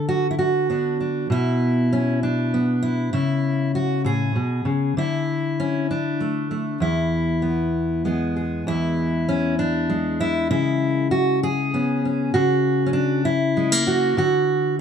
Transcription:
Already playing: D3
0.09 F#4
0.31 E4
0.39 F#4
0.70 B3 D4
1.00 D4
1.30 B2 E4
1.93 C#4
2.23 D4
2.54 B3
2.83 E4
3.13 C#3 E4
3.75 F#4
4.04 A2 G#4
4.36 B2
4.65 C#3
4.97 D3 E4
5.60 C#4
5.91 D4
6.21 A3
6.51 A3
6.80 E2 E4
7.42 B3
8.05 G#3 B3 G#4
8.36 G#4
8.67 E2 E4
9.29 C#4
9.59 D4
9.89 G#3
10.20 E4
10.51 C#3 E4
11.11 F#4
11.43 G#4
11.74 B3 C#4
12.05 C#4
12.34 C#3 F#4
12.86 C#4
12.93 D4
13.25 E4
13.57 G#3
13.72 A#3
13.87 F#4
14.17 D3 F#4

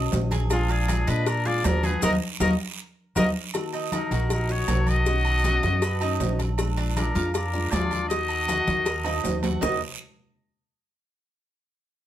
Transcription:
Already playing: B1 D#3 C#4 F#4 D#5
0.12 A#1 D#3 C#4 F#4, cowbell, high conga, low timbale, short guiro, maracas
0.31 G#4, cowbell, high conga, low agogo, short guiro, maracas
0.50 F3 G#3 D4 F4 G#4, cowbell, high conga, low agogo, long guiro, maracas
0.69 F4 G#4 D5, high conga, low agogo, maracas
0.88 F3 G#3 D4 F4, cowbell, high conga, low timbale, low agogo, short guiro, maracas
1.07 A#2 G#3 D4 F4 B4 D#5, cowbell, high conga, short guiro, maracas
1.26 A#4 D5, muted nylon-string guitar stroke, cowbell, low agogo, long guiro, maracas
1.45 G#3 D4 F4 G#4 D5 F5, high conga, maracas
1.64 D#2 F3 G#3 D4 F4 A#4 D5, cowbell, high conga, low timbale, low agogo, short guiro, maracas
1.83 F#4 G#4 B4, high conga, low agogo, short guiro, maracas
2.02 D#2 F#3 A#3 D#4 F#4 A#4 D#5, cowbell, high conga, high timbale, long guiro, maracas
2.40 D#2 F#3 A#3 D#4 F#4 A#4 D#5, cowbell, high conga, high timbale, maracas
3.16 D#2 F#3 A#3 D#4 F#4 A#4 D#5, cowbell, high conga, high timbale, long guiro, maracas
3.54 D#3 A#3 D#4 F#4, cowbell, high conga, low agogo, maracas
3.73 D#4, high conga, low agogo, maracas
3.92 D#3 A#3 D#4 F#4 A#4, cowbell, high conga, low timbale, low agogo, short guiro, maracas
4.11 A#1 A#3 D#4 F#4, cowbell, high conga, short guiro, maracas
4.30 D#4 A#4, muted nylon-string guitar stroke, cowbell, low agogo, long guiro, maracas
4.49 A#3 D#4 F#4 C#5 D#5, high conga, maracas
4.68 B1 D#3 A#3 D#4 F#4 A#4, cowbell, high conga, low timbale, low agogo, short guiro, maracas
4.87 F#4 D#5, high conga, low agogo, short guiro, maracas
5.06 B2 D#3 C#4 D#4 F#4, cowbell, high conga, long guiro, maracas
5.25 high conga, low agogo, maracas
5.44 B2 D#3 C#4 F#4, cowbell, high conga, low timbale, low agogo, short guiro, maracas
5.63 F#2 D#3 C#4 F#4, cowbell, high conga, short guiro, maracas
5.82 B4, muted nylon-string guitar stroke, cowbell, high conga, low agogo, long guiro, maracas
6.00 D#3 C#4 D#4 F#4, high conga, low agogo, maracas
6.20 A#1 D#3 C#4 F#4, cowbell, high conga, low timbale, short guiro, maracas
6.39 cowbell, high conga, low agogo, short guiro, maracas
6.58 F3 G#3 D4 F4, cowbell, high conga, low agogo, long guiro, maracas
6.77 D4, high conga, low agogo, maracas
6.96 F3 G#3 D4 F4 A#4, cowbell, high conga, low timbale, low agogo, short guiro, maracas
7.15 F2 G#3 D4 F4, cowbell, high conga, short guiro, maracas
7.33 D4 A#4, muted nylon-string guitar stroke, cowbell, high conga, low agogo, long guiro, maracas
7.53 G#3 D4 F4 D5, high conga, maracas
7.71 D#2 F3 G#3 F4 G#4 D5, cowbell, high conga, low timbale, low agogo, short guiro, maracas
7.91 high conga, low agogo, short guiro, maracas
8.09 D#3 A#3 D#4 F#4 D#5, cowbell, high conga, long guiro, maracas
8.29 high conga, low agogo, maracas
8.48 D#3 A#3 D#4 F#4, cowbell, high conga, low timbale, low agogo, short guiro, maracas
8.67 D#2 A#3 D#4 F#4, cowbell, high conga, short guiro, maracas
8.86 A#4, muted nylon-string guitar stroke, cowbell, high conga, low agogo, long guiro, maracas
9.04 A#3 D#4 F#4, high conga, high timbale, low agogo, maracas
9.24 D#2 D#3 A#3 D#4 F#4, cowbell, high conga, low timbale, short guiro, maracas
9.43 F#4, cowbell, high conga, low timbale, low agogo, short guiro, maracas
9.61 D#2 D#3 A#3 D#4 F#4 A#4 D#5, low bongo, low conga, low timbale, long guiro, maracas

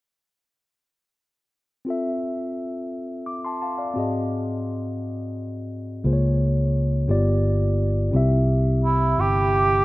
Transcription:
1.85 C4 F4 A4
1.90 E5
3.26 D6
3.45 A5 C6
3.62 F5 A5
3.78 D5 F5
3.94 G#2 C4 F#4 G#4
3.99 D#5
6.04 C#2 C#3 A#3 F4 G#4 C5
6.13 C#5
7.08 G1 G2 B3 F4 G4 D5
8.11 C2 C3 C4 E4 G4
8.16 E5
8.84 E4
9.18 G1 G4

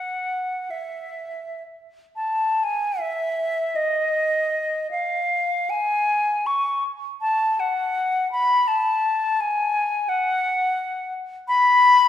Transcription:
Already playing: F#5
0.70 E5
2.16 A5
2.63 G#5
3.00 E5
3.75 D#5
4.91 F5
5.70 G#5
6.46 C#6
7.21 A5
7.60 F#5
8.32 B5
8.68 A5
9.40 G#5
10.09 F#5
11.48 B5

